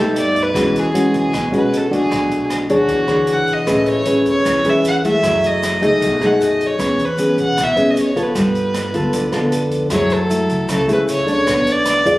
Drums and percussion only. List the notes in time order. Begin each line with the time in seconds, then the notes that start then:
0.16 closed hi-hat
0.36 kick, closed hi-hat
0.55 kick, cross-stick, closed hi-hat
0.76 closed hi-hat
0.95 closed hi-hat
1.14 kick, closed hi-hat
1.33 kick, cross-stick, closed hi-hat
1.53 closed hi-hat
1.73 closed hi-hat
1.92 kick, closed hi-hat
2.11 kick, cross-stick, closed hi-hat
2.31 closed hi-hat
2.50 cross-stick, closed hi-hat
2.69 kick, closed hi-hat
2.88 kick, closed hi-hat
3.08 cross-stick, closed hi-hat
3.27 closed hi-hat
3.47 kick, closed hi-hat
3.67 kick, cross-stick, closed hi-hat, shaker
3.86 closed hi-hat, shaker
4.05 closed hi-hat, shaker
4.26 kick, closed hi-hat, shaker
4.45 kick, cross-stick, closed hi-hat, shaker
4.64 closed hi-hat, shaker
4.85 closed hi-hat, shaker
5.04 kick, closed hi-hat, shaker
5.23 kick, cross-stick, closed hi-hat, shaker
5.43 closed hi-hat, shaker
5.63 cross-stick, closed hi-hat, shaker
5.82 kick, closed hi-hat, shaker
6.01 kick, closed hi-hat, shaker
6.21 cross-stick, closed hi-hat, shaker
6.41 closed hi-hat, shaker
6.60 kick, closed hi-hat, shaker
6.79 kick, cross-stick, closed hi-hat, shaker
6.98 closed hi-hat, shaker
7.18 closed hi-hat, shaker
7.38 kick, closed hi-hat, shaker
7.57 kick, cross-stick, closed hi-hat, shaker
7.77 closed hi-hat, shaker
7.96 closed hi-hat, shaker
8.16 kick, closed hi-hat, shaker
8.35 kick, cross-stick, closed hi-hat, shaker
8.55 closed hi-hat, shaker
8.74 cross-stick, closed hi-hat, shaker
8.94 kick, closed hi-hat, shaker
9.13 kick, closed hi-hat, shaker
9.32 cross-stick, closed hi-hat, shaker
9.52 closed hi-hat, shaker
9.71 kick, closed hi-hat, shaker
9.90 kick, cross-stick, closed hi-hat, shaker
10.10 closed hi-hat, shaker
10.30 closed hi-hat, shaker
10.49 kick, closed hi-hat, shaker
10.69 kick, cross-stick, closed hi-hat, shaker
10.89 closed hi-hat, shaker
11.08 closed hi-hat, shaker
11.27 kick, closed hi-hat, shaker
11.47 kick, cross-stick, closed hi-hat, shaker
11.67 closed hi-hat, shaker
11.85 cross-stick, closed hi-hat, shaker
12.06 kick, closed hi-hat, shaker